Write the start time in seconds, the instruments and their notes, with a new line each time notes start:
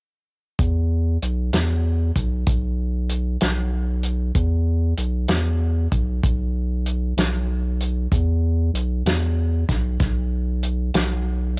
0.59 sub bass E2, kick, closed hi-hat
1.22 sub bass B1, closed hi-hat
1.53 sub bass E2, snare, closed hi-hat
2.16 sub bass B1, kick, closed hi-hat
2.46 sub bass B1, kick, closed hi-hat
3.09 closed hi-hat
3.41 sub bass B1, snare, closed hi-hat
4.03 closed hi-hat
4.35 sub bass E2, kick, closed hi-hat
4.97 sub bass B1, closed hi-hat
5.28 sub bass E2, snare, closed hi-hat
5.92 sub bass B1, kick, closed hi-hat
6.23 sub bass B1, kick, closed hi-hat
6.86 closed hi-hat
7.17 sub bass B1, snare, closed hi-hat
7.81 closed hi-hat
8.12 sub bass E2, kick, closed hi-hat
8.73 sub bass B1, closed hi-hat
9.05 sub bass E2, snare, closed hi-hat
9.69 sub bass B1, kick, snare, closed hi-hat
10.00 sub bass B1, kick, snare, closed hi-hat
10.63 closed hi-hat
10.94 sub bass B1, snare, closed hi-hat